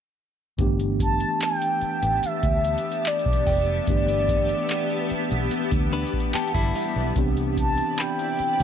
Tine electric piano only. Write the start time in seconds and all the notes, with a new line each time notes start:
0.58 E3 A3 B3 D4 G4
3.87 E3 A3 B3 D4 G4
6.35 A5
6.76 E5
7.15 E3 B3 C4 D4 G4